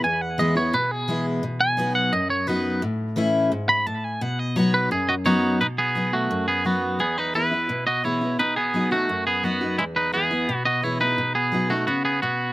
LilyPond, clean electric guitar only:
\new Staff \with { instrumentName = "Clean electric guitar" } { \time 4/4 \key b \mixolydian \tempo 4 = 172 gis''8 fis''8 dis''8 cis''8 b'8 gis'4 r8 | r8 gis''4 fis''8 dis''8 cis''8 b'4 | r2 r8 b''8 a''8 gis''8 | fis''8 dis''8 cis''8 b'8 gis'8 <fis' dis''>8 <dis' fis' cis''>4 |
<dis' b'>8 <b gis'>4 <a fis'>4 <b gis'>8 <b fis'>4 | <b gis'>8 <dis' b'>8 <e' b'>4. <fis' dis''>8 <e' cis''>4 | <dis' b'>8 <b gis'>4 <a fis'>4 <b gis'>8 <b fis'>4 | <gis e'>8 <dis' b'>8 <b gis'>4. <fis' dis''>8 <e' cis''>8 <dis' b'>8~ |
<dis' b'>8 <b gis'>4 <a fis'>8 <b fis'>8 <b gis'>8 <b fis'>4 | }